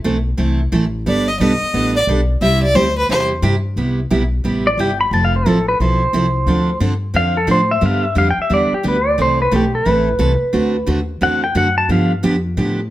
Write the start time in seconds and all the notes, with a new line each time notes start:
0.04 B1 E3 A3 C4 E4 A4
0.37 C2 E3 A3 C4 E4 A4
0.72 A1 E3 A3 C4 E4 A4
1.06 G1 G3 B3 D4 A4 D5
1.28 D#5
1.40 B1 G3 B3 D4 A4 D#5
1.62 muted upright bass stroke
1.74 A1 G3 B3 D4 A4
1.96 D5
2.07 B1 G3 B3 D4 A4
2.41 C2 C3 G3 C4 E4 G4 E5
2.63 D5
2.75 D2 C3 G3 C4 E4 G4 C5
2.98 B4
3.09 E2 C3 G3 C4 E4 G4 C5
3.42 G2 C3 G3 C4 E4 G4
3.76 C2 C3 G3 B3 E4 G4
4.10 B1 C3 G3 B3 E4 G4
4.44 A1 C3 G3 B3 E4 G4
4.67 D5
4.78 G1 C3 G3 B3 E4 G4 G5
5.01 B5
5.11 F1 F3 C4 E4 A4 A5
5.25 F5
5.36 C5
5.46 A1 F3 C4 E4 A4
5.68 B4
5.80 B1 F3 C4 E4 A4 C5
6.13 C2 F3 C4 E4 A4
6.46 D2 D3 F3 C4 D4 A4
6.80 G2 D3 F3 C4 D4 A4
7.14 F2 D3 F3 C4 D4 A4 F5
7.37 A4
7.47 A2 D3 F3 C4 D4 A4
7.51 C5
7.71 E5
7.81 G2 D3 G3 B3 D4 G4
7.86 F5
8.05 E5
8.15 F2 D3 G3 B3 D4 G4 F5
8.31 G5
8.38 E5, muted upright bass stroke
8.50 E2 D3 G3 B3 D4 G4
8.54 D5
8.72 G4, muted upright bass stroke
8.83 D2 D3 G3 B3 D4 G4
8.88 B4
9.08 D5
9.18 C2 E3 A3 C4 E4 A4 C5
9.42 B4
9.51 B1 E3 A3 C4 E4 A4
9.56 G4
9.75 A4
9.85 A1 E3 A3 C4 E4 A4 B4
10.19 C2 E3 A3 C4 E4 A4
10.42 muted upright bass stroke
10.53 D2 D3 A3 C4 F#4 A4
10.86 D#2 D3 A3 C4 F#4 A4
11.21 E2 D3 A3 C4 F#4 A4 F#5
11.44 G5
11.55 F#2 D3 A3 C4 F#4 A4 F#5
11.78 A5
11.89 G2 D3 F3 B3 D4 G4 F5
12.23 F2 D3 F3 B3 D4 G4
12.57 A2 D3 F3 B3 D4 G4